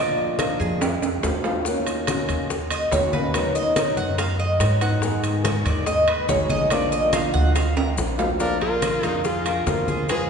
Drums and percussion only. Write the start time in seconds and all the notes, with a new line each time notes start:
0.18 high bongo, high conga
0.39 high bongo, high conga, high timbale, maracas
0.60 high bongo, maracas
0.81 high bongo, high conga, high timbale, maracas
1.02 high bongo, high conga, high timbale, maracas
1.23 high bongo, low bongo, high conga, low timbale, maracas
1.44 low timbale, maracas
1.65 high bongo, high conga, maracas
1.87 high conga, high timbale, maracas
2.07 high bongo, high conga, high timbale, maracas
2.29 high conga, high timbale, maracas
2.50 high bongo, high conga, maracas
2.71 high conga, high timbale, maracas
2.92 high bongo, low bongo, high conga, low timbale, maracas
3.13 high conga, maracas
3.34 high bongo, high conga, high timbale, maracas
3.55 high bongo, high conga, maracas
3.76 high bongo, high conga, high timbale, maracas
3.97 high bongo, maracas
4.18 high bongo, high conga, high timbale, maracas
4.39 high bongo, high conga
4.60 high bongo, low bongo, high conga, high timbale, maracas
4.81 high timbale, maracas
5.02 high bongo, high conga, maracas
5.24 high conga, high timbale, maracas
5.44 high bongo, high conga, high timbale, maracas
5.66 high conga, high timbale, maracas
5.86 high bongo, high conga, maracas
6.08 high conga, high timbale
6.29 high bongo, low bongo, high conga, low timbale, maracas
6.49 high conga, maracas
6.70 high bongo, high conga, high timbale, maracas
6.92 high bongo, high conga, maracas
7.13 high bongo, high conga, high timbale, maracas
7.34 high bongo, maracas
7.55 high bongo, high conga, high timbale, maracas
7.76 high bongo, high conga, high timbale
7.98 high bongo, low bongo, high conga, maracas
8.19 low timbale, maracas
8.40 high bongo, high conga, maracas
8.61 high conga, high timbale
8.82 high bongo, high conga, high timbale, maracas
9.03 high conga, high timbale, maracas
9.24 high bongo, high conga, maracas
9.46 high conga, high timbale, maracas
9.67 high bongo, low bongo, high conga, low timbale, maracas
9.88 high conga, maracas
10.09 high bongo, high conga, high timbale, maracas